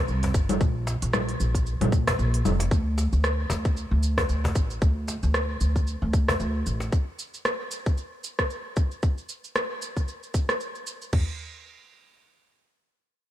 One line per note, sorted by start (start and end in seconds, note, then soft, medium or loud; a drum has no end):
0.08 0.29 C2 medium
0.08 cabasa soft
0.23 cajon bass medium
0.23 cajon slap soft
0.23 open hi-hat soft
0.34 0.55 G1 medium
0.34 kick loud
0.34 cabasa medium
0.49 open hi-hat medium
0.49 low conga medium
0.49 cabasa soft
0.61 0.96 A#1 medium
0.61 kick loud
0.61 cabasa soft
0.87 cajon slap medium
0.87 cabasa medium
1.02 1.35 A#1 medium
1.02 open hi-hat soft
1.02 cabasa soft
1.13 cross-stick medium
1.13 low conga medium
1.13 cabasa soft
1.29 open hi-hat soft
1.40 1.75 A#1 medium
1.40 cabasa medium
1.55 kick medium
1.55 open hi-hat soft
1.55 cabasa soft
1.66 cabasa soft
1.81 2.14 A#1 loud
1.81 open hi-hat soft
1.81 low conga medium
1.81 cabasa soft
1.92 kick loud
1.92 cabasa medium
2.08 cajon bass medium
2.08 cross-stick medium
2.08 open hi-hat soft
2.08 cabasa soft
2.19 2.39 A#1 medium
2.19 cabasa soft
2.34 open hi-hat soft
2.45 2.66 F1 medium
2.45 low conga medium
2.45 cabasa medium
2.60 cajon slap medium
2.60 open hi-hat medium
2.60 cabasa soft
2.71 3.07 D2 medium
2.71 kick loud
2.71 cabasa soft
2.98 cajon slap medium
2.98 cabasa medium
3.13 3.46 D2 medium
3.13 cabasa soft
3.24 cross-stick medium
3.24 cabasa soft
3.50 3.86 D2 medium
3.50 cajon bass medium
3.50 cajon slap medium
3.50 cabasa medium
3.65 kick loud
3.65 cabasa soft
3.77 cabasa soft
3.91 4.25 D2 medium
4.03 cabasa medium
4.18 cajon bass medium
4.18 kick medium
4.18 cross-stick medium
4.18 cabasa soft
4.29 4.50 D2 medium
4.29 cabasa soft
4.44 cajon bass medium
4.44 cajon slap soft
4.55 4.76 A1 medium
4.55 kick medium
4.55 cabasa medium
4.70 cabasa soft
4.82 5.17 D2 medium
4.82 kick loud
4.82 cabasa soft
5.08 cajon slap medium
5.08 cabasa medium
5.23 5.56 D2 medium
5.23 cabasa soft
5.34 cross-stick medium
5.34 cabasa soft
5.61 5.96 D2 medium
5.61 cabasa medium
5.76 kick medium
5.76 cabasa soft
5.87 cabasa soft
6.02 6.35 D2 medium
6.13 kick medium
6.13 cabasa medium
6.28 cajon bass medium
6.28 cross-stick medium
6.28 cabasa soft
6.40 6.60 D2 medium
6.40 cabasa soft
6.66 6.87 A1 medium
6.66 cabasa medium
6.80 cajon slap medium
6.80 cabasa soft
6.92 kick loud
6.92 cabasa soft
7.19 cabasa medium
7.34 cabasa soft
7.45 cross-stick medium
7.45 cabasa soft
7.71 cabasa medium
7.86 kick medium
7.86 cabasa soft
7.97 cabasa soft
8.24 cabasa medium
8.39 kick medium
8.39 cross-stick medium
8.39 cabasa soft
8.50 cabasa soft
8.76 kick medium
8.76 cabasa medium
8.91 cabasa soft
9.03 kick loud
9.03 cabasa soft
9.18 cabasa soft
9.29 cabasa medium
9.44 cabasa soft
9.56 cross-stick medium
9.56 cabasa soft
9.82 cabasa medium
9.97 kick soft
9.97 cabasa soft
10.08 cabasa soft
10.23 cabasa soft
10.34 kick medium
10.34 cabasa medium
10.49 cross-stick medium
10.49 cabasa soft
10.60 cabasa soft
10.75 cabasa soft
10.87 cabasa medium
11.02 cabasa soft
11.13 kick medium
11.13 floor tom medium
11.13 crash medium